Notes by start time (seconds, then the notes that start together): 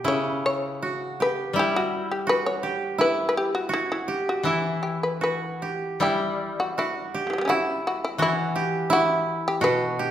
Already playing: G4
0.04 C#3 E4 C#5
0.46 C#5
0.82 F#4
1.20 G4 B4
1.53 G3 E4
1.59 G4
1.76 F#4
2.11 G4
2.27 F#4 B4
2.46 C#5
2.63 G4
2.98 E4 B4
3.29 B4
3.37 G4
3.55 F#4
3.69 F#4
3.74 E4
3.92 E4
4.08 G4
4.29 F#4
4.43 E3 E4
4.83 G4
5.03 B4
5.21 F#4 B4
5.62 G4
6.00 G3 E4 G4
6.60 F#4
6.78 E4 F#4
7.14 G4
7.27 C#3 E3
7.33 F#3
7.38 G3 B3
7.45 C#4 E4
7.50 F#4
7.87 F#4
8.04 E4
8.18 E3 E4 F#4
8.56 G4
8.90 E4 F#4
9.48 G4
9.61 B2 F#4 B4
9.99 G4